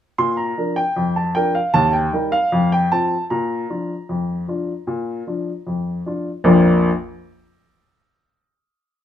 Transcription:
upright piano
0.18 A#2 C6
0.37 A#5
0.58 F3 D4 A#4
0.76 G5
0.96 F2
1.16 A5
1.35 F3 D4 A#4 G5
1.55 F5
1.74 D#2 A5
1.93 G5
2.13 G3 D#4 A#4
2.32 F5
2.52 F2
2.72 G5
2.92 F3 C4 F4 A5
3.30 A#2 A#5
3.70 F3 D4 F4
4.09 F2
4.48 F3 D4 F4
4.87 A#2
5.27 F3 D4 F4
5.67 F2
6.06 F3 D4 F4
6.44 A#1 F2 F3 A#3 D4 F4

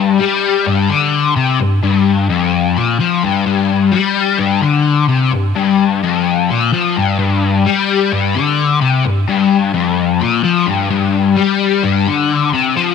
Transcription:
overdriven electric guitar
Already playing: G2
0.19 G3
0.66 G2
0.89 D3
1.36 C3
1.60 G2
1.83 G2
2.30 F2
2.76 A#2
3.00 F3
3.24 G2
3.46 G2
3.92 G3
4.39 G2
4.62 D3
5.09 C3
5.32 G2
5.56 G2
6.03 F2
6.50 A#2
6.73 F3
6.97 G2
7.19 G2
7.66 G3
8.12 G2
8.35 D3
8.81 C3
9.04 G2
9.28 G2
9.74 F2
10.21 A#2
10.44 F3
10.66 G2
10.90 G2
11.36 G3
11.83 G2
12.08 D3
12.54 C3
12.77 F3

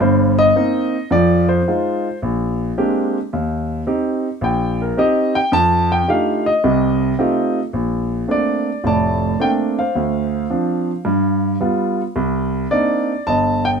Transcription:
grand piano
0.00 G1 G2 C5
0.39 D#5
0.56 A#3 C4 D#4
1.11 F2 F3 D5
1.49 C5
1.68 G#3 D#4 F4
2.22 A#1
2.78 G#3 A#3 C4 D4 G4
3.33 D#2
3.87 C4 D#4 G4
4.41 A#1 G5
4.82 A#4
4.97 C4 D#4 G4 D#5
5.35 G5
5.52 F2 A5
5.92 G5
6.08 A3 D4 D#4 F4 G4 F5
6.46 D#5
6.64 C2 C3
7.19 A3 C4 D#4 F4 G4
7.73 A#1
8.28 A3 A#3 C4 D4 D5
8.84 F1 A2 D5 A5
9.40 A3 A#3 C4 D4 G5
9.79 C5 F5
9.96 D2
10.50 F3 C4 D4
11.05 G2
11.61 G3 B3 F4
12.16 C2
12.71 A#3 C4 D4 D#4 D5
13.27 G1 D#5 A5
13.65 G5

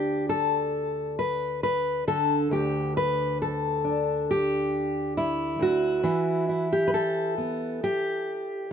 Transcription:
steel-string acoustic guitar
Already playing: D2 D4 G4
0.29 A4
1.19 B4
1.63 B4
2.07 D3 A4
2.51 D2 G4
2.97 B4
3.42 A4
3.84 D4
4.31 G4
5.17 E4
5.59 D2 F#4
6.03 E3 E4
6.49 E4
6.72 G4
6.88 B4
6.94 A4
7.38 B3
7.84 G4

